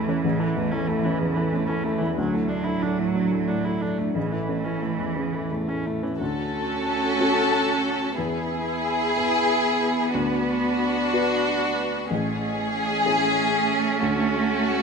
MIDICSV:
0, 0, Header, 1, 6, 480
1, 0, Start_track
1, 0, Key_signature, 3, "major"
1, 0, Tempo, 648649
1, 177, Time_signature, 6, 3, 24, 8
1, 2579, Tempo, 677966
1, 4499, Tempo, 657895
1, 7379, Tempo, 646552
1, 10852, End_track
2, 0, Start_track
2, 0, Title_t, "Violin section"
2, 0, Program_c, 0, 48
2, 4493, Note_on_c, 0, 69, 59
2, 5912, Note_off_c, 0, 69, 0
2, 5949, Note_on_c, 0, 68, 62
2, 7355, Note_off_c, 0, 68, 0
2, 7379, Note_on_c, 0, 66, 57
2, 8802, Note_off_c, 0, 66, 0
2, 8835, Note_on_c, 0, 68, 66
2, 10232, Note_off_c, 0, 68, 0
2, 10269, Note_on_c, 0, 66, 62
2, 10852, Note_off_c, 0, 66, 0
2, 10852, End_track
3, 0, Start_track
3, 0, Title_t, "String section"
3, 0, Program_c, 1, 48
3, 4506, Note_on_c, 1, 73, 48
3, 4514, Note_on_c, 1, 66, 45
3, 4515, Note_on_c, 1, 57, 46
3, 5919, Note_off_c, 1, 73, 0
3, 5923, Note_off_c, 1, 66, 0
3, 5924, Note_off_c, 1, 57, 0
3, 5954, Note_on_c, 1, 68, 44
3, 5958, Note_on_c, 1, 59, 45
3, 5961, Note_on_c, 1, 71, 46
3, 7378, Note_on_c, 1, 66, 48
3, 7386, Note_off_c, 1, 68, 0
3, 8831, Note_off_c, 1, 66, 0
3, 8831, Note_on_c, 1, 68, 48
3, 8838, Note_on_c, 1, 57, 49
3, 8839, Note_off_c, 1, 59, 0
3, 8840, Note_on_c, 1, 73, 47
3, 8841, Note_off_c, 1, 71, 0
3, 10260, Note_off_c, 1, 68, 0
3, 10260, Note_on_c, 1, 66, 50
3, 10852, Note_off_c, 1, 57, 0
3, 10852, Note_off_c, 1, 66, 0
3, 10852, Note_off_c, 1, 73, 0
3, 10852, End_track
4, 0, Start_track
4, 0, Title_t, "Upright piano"
4, 0, Program_c, 2, 0
4, 0, Control_c, 2, 64, 127
4, 0, Note_on_c, 2, 33, 58
4, 0, Note_on_c, 2, 40, 42
4, 0, Note_on_c, 2, 61, 46
4, 0, Note_on_c, 2, 64, 37
4, 0, Note_on_c, 2, 69, 43
4, 64, Note_off_c, 2, 61, 0
4, 64, Note_on_c, 2, 61, 47
4, 182, Note_off_c, 2, 33, 0
4, 182, Note_on_c, 2, 33, 54
4, 191, Control_c, 2, 64, 0
4, 193, Note_off_c, 2, 64, 0
4, 194, Note_off_c, 2, 40, 0
4, 194, Note_off_c, 2, 69, 0
4, 250, Note_off_c, 2, 61, 0
4, 294, Note_off_c, 2, 33, 0
4, 295, Note_on_c, 2, 69, 48
4, 297, Note_on_c, 2, 64, 45
4, 316, Control_c, 2, 64, 127
4, 402, Note_off_c, 2, 69, 0
4, 403, Note_off_c, 2, 64, 0
4, 413, Note_on_c, 2, 40, 45
4, 537, Note_on_c, 2, 64, 41
4, 538, Note_on_c, 2, 69, 46
4, 603, Note_off_c, 2, 40, 0
4, 641, Note_off_c, 2, 64, 0
4, 642, Note_off_c, 2, 69, 0
4, 659, Note_on_c, 2, 64, 42
4, 661, Note_on_c, 2, 69, 47
4, 762, Note_off_c, 2, 64, 0
4, 763, Note_off_c, 2, 69, 0
4, 780, Note_on_c, 2, 61, 42
4, 897, Note_on_c, 2, 40, 48
4, 966, Note_off_c, 2, 61, 0
4, 1012, Note_on_c, 2, 64, 39
4, 1017, Note_on_c, 2, 69, 45
4, 1084, Note_off_c, 2, 40, 0
4, 1118, Note_off_c, 2, 64, 0
4, 1121, Note_off_c, 2, 69, 0
4, 1132, Note_on_c, 2, 61, 41
4, 1250, Note_on_c, 2, 64, 42
4, 1252, Note_on_c, 2, 69, 48
4, 1323, Note_off_c, 2, 61, 0
4, 1358, Note_off_c, 2, 64, 0
4, 1359, Note_off_c, 2, 69, 0
4, 1375, Note_on_c, 2, 64, 42
4, 1376, Note_on_c, 2, 69, 44
4, 1480, Note_off_c, 2, 64, 0
4, 1481, Note_off_c, 2, 69, 0
4, 1487, Note_on_c, 2, 40, 46
4, 1608, Note_off_c, 2, 40, 0
4, 1614, Note_on_c, 2, 38, 55
4, 1621, Control_c, 2, 64, 0
4, 1728, Note_off_c, 2, 38, 0
4, 1732, Note_on_c, 2, 64, 40
4, 1739, Note_on_c, 2, 69, 43
4, 1743, Control_c, 2, 64, 127
4, 1839, Note_off_c, 2, 64, 0
4, 1843, Note_off_c, 2, 69, 0
4, 1859, Note_on_c, 2, 62, 44
4, 1974, Note_on_c, 2, 64, 37
4, 1974, Note_on_c, 2, 69, 39
4, 2048, Note_off_c, 2, 62, 0
4, 2081, Note_off_c, 2, 64, 0
4, 2081, Note_off_c, 2, 69, 0
4, 2092, Note_on_c, 2, 64, 38
4, 2092, Note_on_c, 2, 69, 42
4, 2201, Note_off_c, 2, 64, 0
4, 2201, Note_off_c, 2, 69, 0
4, 2208, Note_on_c, 2, 45, 38
4, 2333, Note_on_c, 2, 62, 40
4, 2406, Note_off_c, 2, 45, 0
4, 2457, Note_on_c, 2, 64, 35
4, 2462, Note_on_c, 2, 69, 38
4, 2530, Note_off_c, 2, 62, 0
4, 2568, Note_off_c, 2, 64, 0
4, 2571, Note_off_c, 2, 69, 0
4, 2579, Note_on_c, 2, 45, 38
4, 2704, Note_on_c, 2, 64, 34
4, 2706, Note_on_c, 2, 69, 38
4, 2769, Note_off_c, 2, 45, 0
4, 2808, Note_off_c, 2, 64, 0
4, 2809, Note_off_c, 2, 69, 0
4, 2818, Note_on_c, 2, 64, 31
4, 2822, Note_on_c, 2, 69, 35
4, 2925, Note_off_c, 2, 64, 0
4, 2927, Note_off_c, 2, 69, 0
4, 2943, Note_on_c, 2, 62, 37
4, 3050, Note_on_c, 2, 33, 46
4, 3059, Note_off_c, 2, 62, 0
4, 3070, Control_c, 2, 64, 0
4, 3169, Note_off_c, 2, 33, 0
4, 3170, Note_on_c, 2, 64, 31
4, 3172, Control_c, 2, 64, 127
4, 3175, Note_on_c, 2, 69, 37
4, 3281, Note_off_c, 2, 64, 0
4, 3284, Note_off_c, 2, 69, 0
4, 3290, Note_on_c, 2, 61, 35
4, 3412, Note_on_c, 2, 64, 30
4, 3416, Note_on_c, 2, 69, 34
4, 3486, Note_off_c, 2, 61, 0
4, 3515, Note_off_c, 2, 64, 0
4, 3521, Note_off_c, 2, 69, 0
4, 3525, Note_on_c, 2, 64, 31
4, 3531, Note_on_c, 2, 69, 35
4, 3639, Note_off_c, 2, 64, 0
4, 3643, Note_off_c, 2, 69, 0
4, 3645, Note_on_c, 2, 40, 32
4, 3768, Note_on_c, 2, 61, 32
4, 3845, Note_off_c, 2, 40, 0
4, 3893, Note_on_c, 2, 64, 27
4, 3894, Note_on_c, 2, 69, 30
4, 3967, Note_off_c, 2, 61, 0
4, 4005, Note_off_c, 2, 64, 0
4, 4005, Note_off_c, 2, 69, 0
4, 4015, Note_on_c, 2, 40, 31
4, 4140, Note_on_c, 2, 64, 34
4, 4140, Note_on_c, 2, 69, 35
4, 4211, Note_off_c, 2, 40, 0
4, 4250, Note_off_c, 2, 64, 0
4, 4250, Note_off_c, 2, 69, 0
4, 4262, Note_on_c, 2, 64, 29
4, 4268, Note_on_c, 2, 69, 34
4, 4371, Note_off_c, 2, 64, 0
4, 4374, Note_off_c, 2, 69, 0
4, 4381, Note_on_c, 2, 61, 34
4, 4500, Note_off_c, 2, 61, 0
4, 4509, Note_on_c, 2, 38, 51
4, 4514, Control_c, 2, 64, 0
4, 4618, Control_c, 2, 64, 127
4, 5210, Note_off_c, 2, 38, 0
4, 5234, Note_on_c, 2, 61, 39
4, 5237, Note_on_c, 2, 66, 39
4, 5238, Note_on_c, 2, 69, 42
4, 5920, Note_off_c, 2, 61, 0
4, 5921, Note_off_c, 2, 66, 0
4, 5922, Note_off_c, 2, 69, 0
4, 5945, Note_on_c, 2, 40, 50
4, 5959, Control_c, 2, 64, 0
4, 6057, Control_c, 2, 64, 127
4, 6640, Note_off_c, 2, 40, 0
4, 6661, Note_on_c, 2, 59, 39
4, 6663, Note_on_c, 2, 64, 37
4, 6665, Note_on_c, 2, 68, 44
4, 7352, Note_off_c, 2, 59, 0
4, 7354, Note_off_c, 2, 64, 0
4, 7355, Note_off_c, 2, 68, 0
4, 7379, Note_on_c, 2, 38, 53
4, 7398, Control_c, 2, 64, 0
4, 7499, Control_c, 2, 64, 127
4, 8086, Note_off_c, 2, 38, 0
4, 8110, Note_on_c, 2, 59, 42
4, 8114, Note_on_c, 2, 66, 42
4, 8117, Note_on_c, 2, 71, 45
4, 8803, Note_off_c, 2, 59, 0
4, 8805, Note_off_c, 2, 66, 0
4, 8807, Note_off_c, 2, 71, 0
4, 8837, Note_on_c, 2, 33, 54
4, 8847, Control_c, 2, 64, 0
4, 8977, Control_c, 2, 64, 127
4, 9529, Note_off_c, 2, 33, 0
4, 9544, Note_on_c, 2, 61, 46
4, 9547, Note_on_c, 2, 64, 42
4, 9549, Note_on_c, 2, 68, 49
4, 10229, Note_off_c, 2, 61, 0
4, 10231, Note_off_c, 2, 64, 0
4, 10232, Note_off_c, 2, 68, 0
4, 10258, Note_on_c, 2, 38, 51
4, 10276, Control_c, 2, 64, 0
4, 10381, Control_c, 2, 64, 127
4, 10852, Note_off_c, 2, 38, 0
4, 10852, End_track
5, 0, Start_track
5, 0, Title_t, "Viola"
5, 0, Program_c, 3, 41
5, 0, Note_on_c, 3, 57, 52
5, 64, Note_on_c, 3, 52, 47
5, 75, Note_off_c, 3, 57, 0
5, 180, Note_off_c, 3, 52, 0
5, 187, Note_on_c, 3, 49, 56
5, 291, Note_on_c, 3, 52, 48
5, 302, Note_off_c, 3, 49, 0
5, 416, Note_on_c, 3, 57, 54
5, 427, Note_off_c, 3, 52, 0
5, 526, Note_on_c, 3, 61, 48
5, 537, Note_off_c, 3, 57, 0
5, 647, Note_on_c, 3, 57, 54
5, 658, Note_off_c, 3, 61, 0
5, 765, Note_on_c, 3, 52, 49
5, 776, Note_off_c, 3, 57, 0
5, 879, Note_on_c, 3, 49, 56
5, 890, Note_off_c, 3, 52, 0
5, 1001, Note_on_c, 3, 52, 49
5, 1012, Note_off_c, 3, 49, 0
5, 1122, Note_on_c, 3, 57, 49
5, 1133, Note_off_c, 3, 52, 0
5, 1240, Note_on_c, 3, 61, 52
5, 1251, Note_off_c, 3, 57, 0
5, 1359, Note_on_c, 3, 57, 53
5, 1370, Note_off_c, 3, 61, 0
5, 1469, Note_on_c, 3, 52, 47
5, 1480, Note_off_c, 3, 57, 0
5, 1595, Note_off_c, 3, 52, 0
5, 1599, Note_on_c, 3, 54, 56
5, 1721, Note_on_c, 3, 57, 49
5, 1732, Note_off_c, 3, 54, 0
5, 1839, Note_on_c, 3, 62, 48
5, 1851, Note_off_c, 3, 57, 0
5, 1952, Note_on_c, 3, 64, 47
5, 1963, Note_off_c, 3, 62, 0
5, 2087, Note_on_c, 3, 62, 45
5, 2099, Note_off_c, 3, 64, 0
5, 2207, Note_on_c, 3, 57, 44
5, 2218, Note_off_c, 3, 62, 0
5, 2324, Note_on_c, 3, 54, 50
5, 2335, Note_off_c, 3, 57, 0
5, 2446, Note_on_c, 3, 57, 43
5, 2457, Note_off_c, 3, 54, 0
5, 2573, Note_on_c, 3, 62, 41
5, 2584, Note_off_c, 3, 57, 0
5, 2692, Note_on_c, 3, 64, 44
5, 2702, Note_off_c, 3, 62, 0
5, 2810, Note_on_c, 3, 62, 43
5, 2821, Note_off_c, 3, 64, 0
5, 2932, Note_on_c, 3, 57, 38
5, 2942, Note_off_c, 3, 62, 0
5, 3048, Note_off_c, 3, 57, 0
5, 3053, Note_on_c, 3, 49, 44
5, 3166, Note_on_c, 3, 52, 37
5, 3177, Note_off_c, 3, 49, 0
5, 3288, Note_on_c, 3, 57, 42
5, 3298, Note_off_c, 3, 52, 0
5, 3399, Note_on_c, 3, 61, 39
5, 3409, Note_off_c, 3, 57, 0
5, 3523, Note_on_c, 3, 57, 38
5, 3533, Note_off_c, 3, 61, 0
5, 3645, Note_on_c, 3, 52, 36
5, 3656, Note_off_c, 3, 57, 0
5, 3764, Note_on_c, 3, 49, 41
5, 3775, Note_off_c, 3, 52, 0
5, 3883, Note_on_c, 3, 52, 39
5, 3894, Note_off_c, 3, 49, 0
5, 4013, Note_on_c, 3, 57, 37
5, 4023, Note_off_c, 3, 52, 0
5, 4135, Note_on_c, 3, 61, 40
5, 4146, Note_off_c, 3, 57, 0
5, 4261, Note_on_c, 3, 57, 40
5, 4271, Note_off_c, 3, 61, 0
5, 4380, Note_on_c, 3, 52, 36
5, 4391, Note_off_c, 3, 57, 0
5, 4495, Note_off_c, 3, 52, 0
5, 4499, Note_on_c, 3, 66, 59
5, 5916, Note_off_c, 3, 66, 0
5, 5939, Note_on_c, 3, 64, 60
5, 7350, Note_off_c, 3, 64, 0
5, 7376, Note_on_c, 3, 62, 64
5, 8800, Note_off_c, 3, 62, 0
5, 8830, Note_on_c, 3, 61, 68
5, 10852, Note_off_c, 3, 61, 0
5, 10852, End_track
6, 0, Start_track
6, 0, Title_t, "Cello"
6, 0, Program_c, 4, 42
6, 0, Note_on_c, 4, 52, 59
6, 1618, Note_on_c, 4, 54, 58
6, 1629, Note_off_c, 4, 52, 0
6, 3047, Note_on_c, 4, 52, 47
6, 3058, Note_off_c, 4, 54, 0
6, 4353, Note_off_c, 4, 52, 0
6, 4508, Note_on_c, 4, 61, 57
6, 5920, Note_off_c, 4, 61, 0
6, 5944, Note_on_c, 4, 59, 61
6, 8803, Note_off_c, 4, 59, 0
6, 8839, Note_on_c, 4, 57, 70
6, 10852, Note_off_c, 4, 57, 0
6, 10852, End_track
0, 0, End_of_file